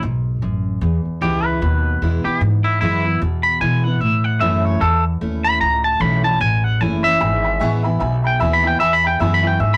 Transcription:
0.03 upright bass B1, steel-string acoustic guitar G#2
0.42 upright bass A1, steel-string acoustic guitar F#2
0.81 upright bass E2, steel-string acoustic guitar E2
1.05 muted upright bass stroke
1.21 upright bass C#2, steel-string acoustic guitar E3 G#3 B3 E4, clean electric guitar G4
1.45 clean electric guitar B4
1.62 upright bass D#2, steel-string acoustic guitar B2
2.02 upright bass E2, steel-string acoustic guitar E3 G#3 B3 E4
2.25 steel-string acoustic guitar B3 E4, clean electric guitar G4, muted upright bass stroke
2.41 steel-string acoustic guitar E2, upright bass G#2
2.64 clean electric guitar E4
2.81 upright bass F#2, steel-string acoustic guitar E3 G#3 B3 E4, clean electric guitar E4
3.04 steel-string acoustic guitar B3 E4
3.21 upright bass E2, steel-string acoustic guitar B2
3.43 clean electric guitar B5
3.61 upright bass B2, steel-string acoustic guitar E3 G#3 B3 E4, clean electric guitar G#5
3.84 steel-string acoustic guitar B3 E4, clean electric guitar F#5
4.00 upright bass A2, steel-string acoustic guitar A2, clean electric guitar E5
4.24 clean electric guitar F#5
4.41 upright bass F#2, steel-string acoustic guitar E3 A3 C#4 E4, clean electric guitar E5
4.65 clean electric guitar C#5
4.81 upright bass E2, steel-string acoustic guitar E2, clean electric guitar A4
5.21 upright bass D#2, steel-string acoustic guitar A3 C#4 E4
5.45 clean electric guitar B5
5.61 upright bass C#2, steel-string acoustic guitar A2, clean electric guitar A#5
5.84 clean electric guitar A5
6.00 upright bass B1, steel-string acoustic guitar E3 A3 C#4 E4, clean electric guitar B5
6.23 steel-string acoustic guitar C#4 E4, clean electric guitar A5
6.40 upright bass A1, steel-string acoustic guitar E2, clean electric guitar G#5
6.64 clean electric guitar F#5
6.81 upright bass F#1, steel-string acoustic guitar E3 A3 C#4 E4, clean electric guitar G#5
7.04 steel-string acoustic guitar C#4 E4, clean electric guitar E5
7.20 upright bass G#1, steel-string acoustic guitar E2, upright piano E5 G#5 B5
7.43 upright piano E5 G#5 B5
7.60 upright bass A1, steel-string acoustic guitar E3 G#3 B3 E4, upright piano E5 G#5 C#6
7.83 steel-string acoustic guitar B3 E4, upright piano E5 G#5 B5
7.99 upright bass B1, steel-string acoustic guitar B2, upright piano E5 G#5 B5
8.22 upright piano E5 G#5 B5
8.27 clean electric guitar G5
8.39 upright bass D#2, steel-string acoustic guitar E3 G#3 B3 E4, upright piano E5 G#5 B5, clean electric guitar E5
8.53 clean electric guitar B5
8.63 steel-string acoustic guitar B3 E4, upright piano E5 G#5 B5
8.67 clean electric guitar G5
8.80 steel-string acoustic guitar E2, upright bass E2, upright piano E5 G#5 B5, clean electric guitar E5
8.93 clean electric guitar B5
9.03 upright piano E5 G#5 B5, clean electric guitar G5
9.19 upright bass F#2, steel-string acoustic guitar E3 G#3 B3 E4, upright piano E5 G#5 B5, clean electric guitar E5
9.34 clean electric guitar B5
9.43 steel-string acoustic guitar B3 E4, upright piano E5 G#5 C#6
9.47 clean electric guitar G5
9.59 steel-string acoustic guitar G#2, upright bass G#2, upright piano E5 G#5 C#6, clean electric guitar E5
9.74 clean electric guitar B5

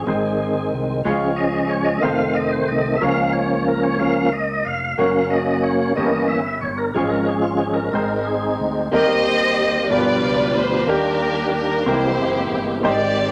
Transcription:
Already playing: tonewheel organ G#4
0.06 fretless electric bass G#1, grand piano G#2 G#3 C4 D#4 G#4 C5, tonewheel organ D#3 G#3 C4
0.72 fretless electric bass C2
1.04 fretless electric bass C#2, grand piano C#3 G#3 C#4 F4 G#4 C#5, tonewheel organ F3 G#3 C#4
1.36 tonewheel organ D#5
1.69 tonewheel organ C#5
1.84 tonewheel organ D#5
2.00 fretless electric bass F1, tonewheel organ D#3 A3 C4 F5, grand piano C4 D#4 F4 A4
2.05 grand piano C5
2.35 tonewheel organ D#5
2.51 tonewheel organ C5
2.68 fretless electric bass C2, tonewheel organ D#5
2.96 grand piano C#4, tonewheel organ E5
3.01 fretless electric bass C#2, grand piano C#3 A#3 F4 A#4 C#5, tonewheel organ F3 A#3 C#4 F5
3.33 tonewheel organ C#5
3.68 tonewheel organ A#4
3.83 tonewheel organ C#5
3.98 tonewheel organ F3 A#3 C#4 F5, grand piano A#3 C#4 F4 A#4 C#5
4.33 tonewheel organ D#5
4.65 fretless electric bass F1, tonewheel organ F5
4.98 fretless electric bass F#1, tonewheel organ F#3 A#3 C#4, grand piano A#3 C#4 F#4 A#4 C#5
5.30 tonewheel organ D#5
5.63 tonewheel organ C#5
5.95 fretless electric bass G1, grand piano G2 C#4 E4 G4 A4 C#5, tonewheel organ E3 A#3 C#4 D#5
6.04 grand piano A#4
6.28 tonewheel organ E5
6.61 fretless electric bass G1, tonewheel organ C#5
6.78 tonewheel organ A#4
6.94 fretless electric bass G#1, grand piano G#2 G#3 C#4 F4 G#4 C#5, tonewheel organ F3 G#3 C#4 G#4
7.10 tonewheel organ A#4
7.26 tonewheel organ G#4
7.42 tonewheel organ F4
7.57 tonewheel organ G#4
7.73 tonewheel organ A#4
7.92 fretless electric bass G#1, grand piano G#2 G#3 C4 D#4 G#4 C5, tonewheel organ G#3 C4 D#4
8.25 tonewheel organ G#4
8.60 fretless electric bass D2
8.91 fretless electric bass D#2, tonewheel organ D#3 G3 A#3 C4 G4, grand piano D#3 A#3 C4 D#4 G4 A#4, string section G4 C5 D#5
9.89 fretless electric bass G1, grand piano G2 B3 D4 F4 G4 A#4, tonewheel organ B2 F3 G3 D4 F#4, string section F4 B4 D5
9.96 tonewheel organ G4, grand piano B4
10.23 fretless electric bass C#2
10.56 fretless electric bass D2, string section C5
10.86 fretless electric bass D#2, tonewheel organ D#3 G3 A#3 D4 G4, grand piano D#3 A#3 D4 G4 A#4, string section A#4
10.90 string section D4 G4
11.54 string section A#4
11.85 fretless electric bass C2, grand piano C3 G#3 C4 D#4 G4 A#4, tonewheel organ E3 G#3 A#3 C4 F#4, string section E4 G4 C5
11.92 grand piano E4, tonewheel organ G4
12.18 fretless electric bass F#1
12.51 fretless electric bass G1
12.83 fretless electric bass G#1, grand piano G#2 G#3 C4 D#4 G4 C5, tonewheel organ D#3 G#3 A#3 G4, string section G4 D5
12.90 tonewheel organ C4

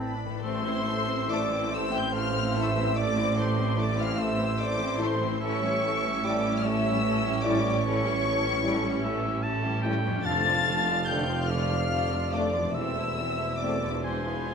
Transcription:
Already playing: double bass section A1, cello section A2, viola section E4
0.00 clarinet C4, flute section B4 A5, violin section D5 B5
0.26 harp A2
0.30 harp A3
0.35 harp E4
0.39 cello section A2, viola section A3, harp A4
0.44 tuba A1, double bass section A1, violin section C4 A4 C6, flute section C5, cor anglais E5
0.64 viola section E3 C4, violin section E4 C5
0.83 viola section A3, violin section C4 A4
1.06 viola section E3 C4, violin section E4 C5
1.28 viola section A3, french horn section A3 E4, violin section C4 A4 D6, flute section D5
1.48 viola section E3 C4, violin section E4 C5
1.69 viola section A3, violin section C4 A4, cor anglais C5, flute section E5
1.75 violin section E6
1.91 viola section E3 C4, violin section E4 C5, flute section G5
1.96 violin section G6
2.12 viola section A3, violin section C4 A4, flute section F5
2.17 violin section F6
2.33 viola section E3 C4, violin section E4 C5
2.55 viola section A3, french horn section A3 E4, violin section C4 A4 E6, flute section E5
2.76 viola section E3 C4, violin section E4 C5
2.96 viola section A3, violin section C4 A4 D6, flute section D5, cor anglais D5
3.17 viola section E3 C4, violin section E4 C5
3.37 viola section A3, violin section C4 A4 C6, flute section C5
3.57 viola section E3 C4, violin section E4 C5
3.75 viola section A3, french horn section A3 E4, violin section C4 A4, flute section D5
3.80 violin section D6
3.96 viola section E3 C4, violin section E4 C5, flute section F5
4.01 violin section F6
4.16 viola section A3, violin section C4 A4 E6, cor anglais C5
4.21 flute section E5
4.36 viola section E3 C4, violin section E4 C5
4.56 viola section A3, violin section C4 A4
4.60 flute section D5, violin section D6
4.77 viola section E3 C4, violin section E4 C5
4.98 viola section A3, french horn section A3 E4, violin section C4 A4, flute section C5
5.02 violin section C6
5.20 harp A2, viola section E3 C4, violin section E4 C5
5.27 harp A3
5.32 harp E4
5.36 harp A4
5.41 tuba A1, double bass section A1, cello section A2, viola section E3 A3, violin section C#4 A4, flute section C#5, cor anglais E5
5.45 violin section C#6
5.62 viola section G3 C#4, violin section E4 G4
5.84 viola section E3 A3, violin section C#4 A4
6.04 viola section G3 C#4, violin section E4 G4
6.24 viola section E3 A3, french horn section G3 E4, violin section C#4 A4 D6, flute section D5
6.46 viola section G3 C#4, violin section E4 G4
6.59 violin section F6
6.63 viola section E3 A3, violin section C#4 A4 E6, cor anglais C#5, flute section E5
6.84 viola section G3 C#4, violin section E4 G4
7.03 viola section E3 A3, violin section C#4 A4
7.22 viola section G3 C#4, violin section E4 G4
7.43 viola section E3 A3, french horn section G3 E4, violin section C#4 A4 D6, flute section D5
7.64 viola section G3 C#4, violin section E4 G4
7.83 viola section E3 A3, violin section C#4 A4 C#6, flute section C#5
8.04 viola section G3 C#4, violin section E4 G4
8.24 viola section E3 A3, violin section C#4 A4
8.43 viola section G3 C#4, violin section E4 G4
8.62 viola section E3 A3, french horn section G3 E4, violin section A4
8.66 violin section C#4
8.83 viola section G3 C#4, violin section E4 G4
9.03 viola section E3 A3, violin section C#4 A4, cor anglais E5
9.24 viola section G3 C#4, violin section E4 G4
9.43 viola section E3 A3, violin section C#4 A4, cor anglais A5
9.63 viola section G3 C#4, violin section E4 G4
9.82 viola section E3 A3, french horn section G3 E4, violin section C#4 A4, cor anglais G5
10.05 harp F2, viola section G3 C#4, violin section E4 G4
10.12 harp A3
10.16 harp D4
10.20 violin section F4 A6, harp A4
10.24 tuba F1, double bass section F1, cello section F2, viola section D3 A3, violin section A4, cor anglais F5, flute section A5
10.46 viola section F3, violin section D4 F4
10.66 viola section D3 A3, violin section F4 A4
10.88 viola section F3, violin section D4 F4
11.06 violin section A4 G6, flute section G5
11.10 viola section D3 A3, french horn section A3 D4, violin section F4
11.30 viola section F3, violin section D4 F4
11.46 flute section F5, violin section F6
11.51 viola section D3 A3, violin section F4 A4, cor anglais D5
11.71 viola section F3, violin section D4 F4
11.91 viola section D3 A3, violin section F4 A4
12.11 viola section F3, violin section D4 F4
12.31 viola section D3 A3, french horn section A3 D4, violin section F4 A4 D6, flute section D5
12.53 harp E2, viola section F3, violin section D4 F4
12.61 harp C4
12.66 harp E4
12.70 cello section E2, harp A4, flute section E5, violin section E6
12.74 tuba E1, double bass section E1, viola section E3 C4, violin section C4 A4, cor anglais E5
12.96 viola section A3, violin section E4 C5
13.18 viola section E3 C4, violin section C4 A4
13.37 viola section A3, violin section E4 C5
13.58 viola section E3 C4, french horn section A3 C4, violin section C4 A4 D6, flute section D5
13.81 viola section A3, violin section E4 C5
13.85 harp E2
13.89 harp D4
13.94 harp F4
13.99 harp G#4
14.03 viola section G#3 D4, violin section E4 G#4 C6, flute section C5, cor anglais G#5
14.26 viola section B3 E4, violin section F4 B4
14.49 viola section G#3 D4, violin section E4 G#4

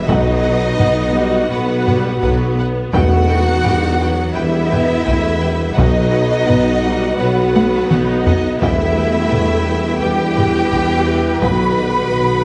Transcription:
Already playing: trombone section B3, string section B4
0.07 tuba B1, double bass section B1, timpani B2, viola section F#3, string section B3 F#4 F#5, french horn section B3, cello section D#4, trombone section F#4, violin section B4 D#5 F#5, flute D#5, taiko
0.44 violin section B4 F#5
0.79 double bass section B1, tuba B1, viola section B3, violin section B4 F#5, taiko low-mid
1.16 viola section G3, violin section B4 F#5
1.51 double bass section B1, tuba B1, viola section F#3, cello section B3, french horn section F#4, flute B4, violin section B4 F#5
1.87 viola section G3, violin section B4 F#5, taiko low-mid
2.21 double bass section B1, tuba B1, viola section F#3, french horn section F#3, cello section B3, flute B4, violin section B4 F#5, taiko
2.58 viola section B3, violin section B4 F#5
2.92 tuba E1, double bass section E2, timpani E2, trombone section E3 B3, viola section A3, french horn section D#4, cello section F#4, string section B4, violin section B4 F#5 G5, flute F#5, taiko
3.28 violin section B4 G5
3.63 tuba E1, double bass section E2, viola section G3, violin section B4 G5, taiko low-mid
4.00 viola section F#3, violin section B4 G5
4.35 tuba E1, double bass section E2, viola section G3, french horn section B3, cello section E4, violin section B4 E5 G5, flute E5
4.71 viola section B3, violin section B4 G5, taiko low-mid
5.05 tuba E1, double bass section E2, viola section A3, violin section B4 G5, taiko
5.40 viola section G3, violin section B4 G5
5.74 double bass section B1, timpani B2, string section B3 F#4 F#5, french horn section B3, cello section D#4, trombone section F#4, violin section B4 F#5, flute D#5
5.78 tuba B1, viola section F#3, violin section D#5, taiko
6.12 violin section B4 F#5
6.46 double bass section B1, tuba B1, viola section B3, violin section B4 F#5, taiko low-mid
6.83 viola section G3, violin section B4 F#5
7.18 tuba B1, double bass section B1, french horn section F#3, viola section F#3, cello section B3, violin section B4 F#5, flute B4
7.55 violin section B4 F#5, taiko high
7.90 double bass section B1, tuba B1, viola section D#4, violin section B4 F#5, taiko mid
8.25 french horn section B3, viola section B3, cello section D#4, violin section B4 D#5 F#5, flute D#5, taiko low
8.59 tuba E1, double bass section E2, trombone section G3 B3, viola section A3, french horn section B3, string section E4 B4 G5, cello section E4, violin section B4 E5 G5, flute E5, taiko
8.97 violin section B4 G5
9.30 tuba E1, double bass section E2, violin section B4 G5, taiko low-mid
9.65 violin section B4 G5
10.01 tuba E1, double bass section E2, viola section G3, french horn section E4, cello section G4, violin section B4 G5, flute G5
10.37 viola section E3, violin section B4 G5, taiko low-mid
10.71 tuba E1, double bass section E2, violin section B4 G5, taiko
11.05 violin section B4 G5
11.40 double bass section B1, tuba B1, timpani B2, trombone section D#3, viola section F#3, string section B3 D#4 F#5, french horn section F#4, violin section B4 D#5 B5, cello section B4, flute B5, taiko
11.77 viola section G3, violin section B4 D#5
12.11 double bass section B1, tuba B1, violin section B4 D#5
12.16 viola section F#3

